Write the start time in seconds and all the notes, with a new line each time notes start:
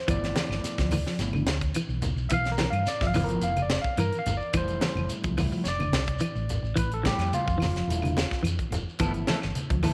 0.08 G1 E3 F3 A3 B3 E4 D5, kick, closed hi-hat, low conga, claves, shekere
0.24 snare, closed hi-hat, shekere
0.36 E3, snare, closed hi-hat, high conga, shekere
0.49 G1, snare, claves, shekere
0.63 muted fingered electric bass stroke, snare, closed hi-hat, shekere
0.78 D2 F3, kick, snare, closed hi-hat, shekere
0.91 E3, open hi-hat, high conga, low conga, claves, shekere
1.06 F3, snare, shekere
1.18 G1 F3 A3 B3 E4, snare, closed hi-hat, shekere
1.33 D3, high conga, claves, shekere
1.46 D2, snare, closed hi-hat, high conga, shekere
1.61 kick, closed hi-hat, shekere
1.74 E3, closed hi-hat, claves, shekere
1.88 B1, shekere
2.02 closed hi-hat, high conga, low conga, shekere
2.16 B1, shekere
2.29 B1 E3 E5, kick, closed hi-hat, claves, shekere
2.33 F5
2.44 snare, closed hi-hat, shekere
2.52 A#4
2.57 E3, snare, closed hi-hat, high conga, shekere
2.70 G2 F5, closed hi-hat, claves, shekere
2.86 D5, snare, closed hi-hat, shekere
3.01 G1 F3 E5, kick, snare, shekere
3.07 F5
3.14 E3 F3 A3 B3 E4, open hi-hat, high conga, low conga, claves, shekere
3.24 A#4
3.29 F3, closed hi-hat, shekere
3.41 F1 F5, closed hi-hat, shekere
3.57 closed hi-hat, high conga, claves, shekere
3.62 D5
3.70 snare, closed hi-hat, high conga, shekere
3.82 F5, muted fingered electric bass stroke, kick
3.86 shekere
3.97 G2 E3 A#4, closed hi-hat, claves, shekere
4.13 closed hi-hat, shekere
4.19 F5
4.26 G1, closed hi-hat, low conga, shekere
4.37 D5, shekere
4.53 F1 E3 G3 A3 E4 C5, kick, closed hi-hat, claves, shekere
4.68 closed hi-hat, shekere
4.81 E3, snare, closed hi-hat, high conga, shekere
4.95 F1, high conga, claves, shekere
5.09 closed hi-hat, shekere
5.24 C2 F3, kick, closed hi-hat, shekere
5.38 E3 G3 A3 E4, open hi-hat, high conga, low conga, claves, shekere
5.52 F3, shekere
5.64 F1 C#5, snare, closed hi-hat, shekere
5.68 D5
5.79 D3, high conga, claves, shekere
5.92 C2, snare, closed hi-hat, high conga, shekere
6.07 kick, closed hi-hat, shekere
6.19 E3, closed hi-hat, claves, shekere
6.35 A1, shekere
6.49 closed hi-hat, low conga, shekere
6.62 A1, shekere
6.76 A1 E3 B4, kick, closed hi-hat, claves, shekere
6.92 A4, closed hi-hat, shekere
7.03 E3 G3 A3 E4 G4, kick, snare, closed hi-hat, high conga, shekere
7.18 F2, snare, closed hi-hat, claves, shekere
7.33 F4, closed hi-hat, high conga, shekere
7.46 F1 F3, kick, shekere
7.58 E3, claves, shekere
7.62 snare, open hi-hat, high conga, low conga
7.74 F3, snare, closed hi-hat, shekere
7.87 E1 G3 A3 E4, closed hi-hat, shekere
8.02 D3, closed hi-hat, high conga, claves, shekere
8.17 snare, closed hi-hat, high conga, shekere
8.31 kick, snare, shekere
8.43 F2 E3, closed hi-hat, claves, shekere
8.59 kick, closed hi-hat, shekere
8.71 F1, closed hi-hat, low conga, shekere
8.89 shekere
8.99 G1 E3 F3 A3 B3 E4 A4, kick, closed hi-hat, claves, shekere
9.14 muted clean electric guitar stroke, closed hi-hat, shekere
9.27 E3 F3 B3 E4 A4, snare, closed hi-hat, high conga, shekere
9.42 G1, muted clean electric guitar stroke, snare, claves, shekere
9.55 muted fingered electric bass stroke, closed hi-hat, high conga, shekere
9.70 D2 F3, muted clean electric guitar stroke, kick, closed hi-hat, shekere
9.83 E3 F3 B3 E4 A4, open hi-hat, high conga, low conga, claves, shekere